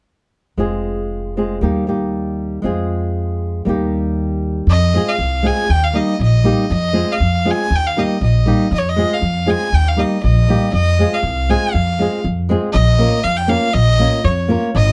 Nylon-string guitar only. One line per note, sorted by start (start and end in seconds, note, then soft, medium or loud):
0.58 1.35 G#3 soft
0.58 1.36 C4 soft
0.58 1.36 F4 soft
0.58 1.37 G#4 medium
1.37 1.61 G#3 soft
1.37 1.62 C4 soft
1.37 1.62 F4 soft
1.37 1.63 G#4 soft
1.61 1.86 G3 medium
1.61 1.87 A#3 soft
1.61 1.88 D#4 soft
1.61 1.87 G4 medium
1.87 2.62 G3 soft
1.87 2.63 A#3 soft
1.87 2.64 D#4 soft
1.87 2.65 G4 soft
2.62 3.63 G#3 medium
2.62 3.64 C4 soft
2.62 3.64 F4 medium
2.62 3.65 G#4 medium
3.65 4.65 G3 medium
3.65 4.66 A#3 medium
3.65 4.67 D#4 medium
3.65 4.67 G4 medium
4.94 5.13 G#3 medium
4.94 5.13 C4 medium
4.94 5.14 F4 medium
4.94 5.14 G#4 medium
5.43 5.63 G#3 medium
5.43 5.63 C4 medium
5.43 5.64 F4 medium
5.43 5.64 G#4 medium
5.93 6.13 G3 medium
5.93 6.13 A#3 medium
5.93 6.14 D#4 medium
5.93 6.14 G4 medium
6.44 6.64 G3 medium
6.44 6.64 A#3 medium
6.44 6.65 D#4 medium
6.44 6.65 G4 medium
6.93 7.14 G#3 medium
6.93 7.14 C4 medium
6.93 7.14 F4 medium
6.93 7.14 G#4 medium
7.45 7.65 G#3 medium
7.45 7.65 C4 medium
7.45 7.65 F4 medium
7.45 7.66 G#4 medium
7.96 8.16 G3 medium
7.96 8.16 A#3 medium
7.96 8.16 D#4 medium
7.96 8.16 G4 medium
8.46 8.65 G3 medium
8.46 8.66 A#3 medium
8.46 8.66 D#4 medium
8.46 8.66 G4 medium
8.96 9.16 G#3 medium
8.96 9.16 C4 medium
8.96 9.17 F4 medium
8.96 9.17 G#4 medium
9.46 9.66 G#3 medium
9.46 9.66 C4 medium
9.46 9.66 F4 medium
9.46 9.67 G#4 medium
9.96 10.16 G3 medium
9.96 10.17 A#3 medium
9.96 10.17 D#4 medium
9.96 10.17 G4 medium
10.48 10.67 G3 medium
10.48 10.68 A#3 medium
10.48 10.68 D#4 medium
10.48 10.68 G4 medium
10.99 11.18 G#3 medium
10.99 11.18 C4 medium
10.99 11.18 F4 medium
10.99 11.19 G#4 medium
11.49 11.68 G#3 medium
11.49 11.68 C4 medium
11.49 11.68 F4 medium
11.49 11.69 G#4 medium
11.99 12.18 G#3 medium
11.99 12.19 C4 medium
11.99 12.19 F4 medium
11.99 12.19 G#4 medium
12.49 12.68 G#3 medium
12.49 12.68 C4 medium
12.49 12.69 F4 medium
12.49 12.69 G#4 medium
12.98 13.18 A#3 medium
12.98 13.18 C#4 medium
12.98 13.19 F4 medium
12.98 13.19 A#4 medium
13.48 13.68 A#3 medium
13.48 13.68 C#4 medium
13.48 13.68 F4 medium
13.48 13.69 A#4 medium
13.99 14.19 A#3 medium
13.99 14.19 C#4 medium
13.99 14.19 F4 medium
13.99 14.20 A#4 medium
14.48 14.68 A#3 medium
14.48 14.69 C#4 medium
14.48 14.69 F4 medium
14.48 14.69 A#4 medium